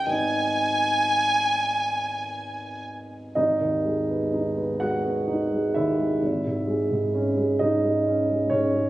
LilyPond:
<<
  \new Staff \with { instrumentName = "Violin" } { \time 6/8 \key gis \minor \tempo 4. = 42 gis''2~ gis''8 r8 | r2. | r2. | }
  \new Staff \with { instrumentName = "Grand piano" } { \time 6/8 \key gis \minor <gis,, b dis' dis''>2. | <dis' dis''>4. <fis' fis''>4 <e' e''>8~ | <e' e''>4. <dis' dis''>4 <cis' cis''>8 | }
  \new Staff \with { instrumentName = "Grand piano" } { \clef bass \time 6/8 \key gis \minor r2. | gis,,16 dis,16 gis16 b16 dis'16 b16 gis16 b16 dis'16 gis16 dis,16 gis16 | gis,,16 gis,16 gis16 gis,16 cis'16 gis16 gis,16 gis16 cis'16 gis16 gis,16 gis16 | }
>>